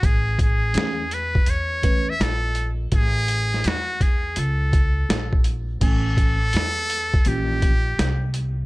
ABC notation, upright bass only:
X:1
M:4/4
L:1/8
Q:"Swing 16ths" 1/4=83
K:A
V:1 name="Upright bass" clef=bass
A,,,2 E,,2 E,,2 _B,,,2 | A,,,2 E,,2 C,,2 _B,,,2 | A,,,2 E,,2 ^A,,,2 =C,,2 |]